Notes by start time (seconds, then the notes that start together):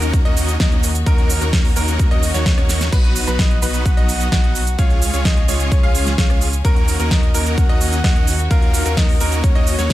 Already playing: D#2 D#3 A#3 C#4 D#4 F#4 A#4
0.02 closed hi-hat, cabasa
0.13 kick, closed hi-hat, cabasa
0.25 D#2 A#3 C#4 D#4 F#4 D#5, closed hi-hat
0.37 open hi-hat, cabasa
0.49 closed hi-hat, cabasa
0.60 D#2 A#3 C#4 D#4 F#4 D#5, kick, cross-stick, snare, closed hi-hat, cabasa
0.72 closed hi-hat
0.83 open hi-hat, cabasa
0.95 closed hi-hat, cabasa
1.06 D#2 A#3 C#4 D#4 F#4 A#4, kick, closed hi-hat, cabasa
1.18 closed hi-hat
1.30 open hi-hat, cabasa
1.41 D#2 A#3 C#4 D#4 F#4 A#4, closed hi-hat, cabasa
1.53 kick, snare, closed hi-hat, cabasa
1.65 open hi-hat
1.76 D#2 A#3 C#4 D#4 F#4 A#4, open hi-hat, cabasa
1.88 closed hi-hat, cabasa
1.99 kick, closed hi-hat, cabasa
2.11 D#2 A#3 C#4 D#4 F#4 D#5, closed hi-hat
2.23 open hi-hat, cabasa
2.34 D#2 A#3 C#4 D#4 F#4 C#5, snare, closed hi-hat, cabasa
2.46 kick, snare, closed hi-hat, cabasa
2.58 D#2 A#3 C#4 D#4 F#4 C#5, cross-stick, closed hi-hat
2.69 snare, open hi-hat, cabasa
2.81 snare, closed hi-hat, cabasa
2.92 B1 F#3 B3 D#4 F#4 B4, kick, closed hi-hat, crash, cabasa
3.04 closed hi-hat
3.16 open hi-hat, cabasa
3.27 B1 F#3 B3 D#4 F#4 B4, closed hi-hat, cabasa
3.39 D#5, kick, snare, closed hi-hat, cabasa
3.51 closed hi-hat
3.62 B1 F#3 B3 D#4 F#4 B4, open hi-hat, cabasa
3.74 closed hi-hat, cabasa
3.86 F#5, kick, closed hi-hat, cabasa
3.97 B1 F#3 B3 D#4 F#4 D#5, closed hi-hat
4.09 open hi-hat, cabasa
4.20 closed hi-hat, cabasa
4.32 B1 F#3 B3 D#4 F#4 D#5, kick, cross-stick, snare, closed hi-hat, cabasa
4.44 closed hi-hat
4.55 open hi-hat, cabasa
4.67 closed hi-hat, cabasa
4.79 C#2 C#3 G#3 C#4 F4 G#4 C#5 F5, kick, closed hi-hat, cabasa
4.90 closed hi-hat
5.02 open hi-hat, cabasa
5.14 C#2 G#3 C#4 F4 G#4 C#5, closed hi-hat, cabasa
5.25 D#5, kick, snare, closed hi-hat, cabasa
5.37 closed hi-hat
5.48 C#2 G#3 C#4 F4 G#4 C#5, open hi-hat, cabasa
5.60 closed hi-hat, cabasa
5.72 C#5, kick, closed hi-hat, cabasa
5.83 C#2 G#3 C#4 F4 G#4 F5, closed hi-hat
5.95 C#5, open hi-hat, cabasa
6.07 snare, closed hi-hat, cabasa
6.18 C#2 G#3 C#4 F4 G#4 F5, kick, snare, closed hi-hat, cabasa
6.30 cross-stick, closed hi-hat
6.41 open hi-hat, cabasa
6.53 closed hi-hat, cabasa
6.65 D#2 D#3 A#3 C#4 D#4 F#4 A#4, kick, closed hi-hat, cabasa
6.76 closed hi-hat
6.88 open hi-hat, cabasa
7.00 D#2 A#3 C#4 D#4 F#4 A#4, closed hi-hat, cabasa
7.11 D#5, kick, snare, closed hi-hat, cabasa
7.23 closed hi-hat
7.34 D#2 A#3 C#4 D#4 F#4 A#4, open hi-hat, cabasa
7.46 closed hi-hat, cabasa
7.58 F#5, kick, closed hi-hat, cabasa
7.69 D#2 A#3 C#4 D#4 F#4 D#5, closed hi-hat
7.81 open hi-hat, cabasa
7.93 closed hi-hat, cabasa
8.04 D#2 A#3 C#4 D#4 F#4 D#5, kick, cross-stick, snare, closed hi-hat, cabasa
8.16 closed hi-hat
8.27 open hi-hat, cabasa
8.39 closed hi-hat, cabasa
8.51 D#2 A#3 C#4 D#4 F#4 A#4 F5, kick, closed hi-hat, cabasa
8.62 closed hi-hat
8.74 open hi-hat, cabasa
8.86 D#2 A#3 C#4 D#4 F#4 A#4, closed hi-hat, cabasa
8.97 D#5, kick, snare, closed hi-hat, cabasa
9.09 open hi-hat
9.20 D#2 A#3 C#4 D#4 F#4 A#4, open hi-hat, cabasa
9.32 closed hi-hat, cabasa
9.44 C#5, kick, closed hi-hat, cabasa
9.55 D#2 A#3 C#4 D#4 F#4 D#5, closed hi-hat
9.67 C#5, open hi-hat, cabasa
9.79 D#2 A#3 C#4 D#4 F#4 C#5, snare, closed hi-hat, cabasa